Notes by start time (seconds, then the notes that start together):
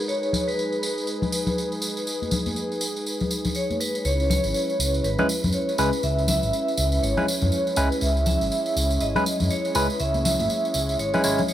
Already playing: G#3 D#4 B4
0.08 G#4 C#5, tambourine
0.23 tambourine
0.33 tambourine, low conga
0.48 B4, tambourine
0.59 tambourine
0.72 tambourine
0.82 B4, tambourine
0.98 tambourine
1.07 tambourine
1.22 tambourine, low conga
1.32 tambourine
1.47 tambourine, low conga
1.58 tambourine
1.72 tambourine
1.82 tambourine
1.97 tambourine
2.07 tambourine
2.22 tambourine, high conga
2.31 tambourine, low conga
2.46 tambourine, high conga
2.56 tambourine
2.72 tambourine
2.81 tambourine
2.96 tambourine
3.06 tambourine
3.20 tambourine, low conga
3.31 tambourine
3.45 tambourine, low conga
3.55 C#5, tambourine
3.70 tambourine, high conga
3.80 B4, tambourine
3.95 tambourine
4.05 C#2 G#3 C#4 E4 B4 C#5, tambourine
4.20 tambourine
4.30 C#5, tambourine, low conga
4.44 G#1, tambourine
4.54 tambourine
4.70 tambourine
4.79 C#2, tambourine
4.94 tambourine
5.04 G#1 B4, tambourine
5.18 G#3 C#4 E4 B4, tambourine, low conga
5.29 tambourine
5.44 F#2, tambourine, low conga
5.52 C#5, tambourine
5.69 tambourine
5.78 C#2 G#3 C#4 E4 B4, tambourine
5.93 tambourine
6.03 C#2 E5, tambourine
6.18 tambourine
6.28 E5, tambourine, low conga
6.43 G#1, tambourine
6.53 tambourine
6.68 tambourine
6.77 C#2, tambourine
6.92 tambourine
7.03 G#1 C#5, tambourine
7.17 G#3 C#4 E4 B4, tambourine, low conga
7.28 tambourine
7.42 F#2, tambourine, low conga
7.52 C#5, tambourine
7.67 tambourine
7.76 C#2 G#3 C#4 E4 B4, tambourine
7.92 tambourine
8.01 C#2 C#5 E5, tambourine
8.17 tambourine
8.26 E5, tambourine, low conga
8.41 G#1, tambourine
8.52 tambourine
8.66 tambourine
8.76 C#2, tambourine
8.90 tambourine
9.00 G#1 D#5, tambourine
9.15 G#3 C#4 E4 B4, tambourine, low conga
9.26 tambourine
9.40 F#2, tambourine, low conga
9.50 C#5, tambourine
9.65 tambourine
9.75 C#2 G#3 C#4 E4 B4, tambourine
9.90 tambourine
9.99 C#2 E5, tambourine
10.14 tambourine, high conga
10.25 E5, tambourine, low conga
10.39 G#1, tambourine, high conga
10.50 tambourine
10.65 tambourine
10.74 C#2, tambourine
10.89 tambourine
10.99 G#1 C#5, tambourine
11.14 G#3 C#4 E4 B4, tambourine, low conga
11.24 G#1 G#3 C#4 E4 C#5, tambourine
11.38 tambourine, low conga
11.48 C#5, tambourine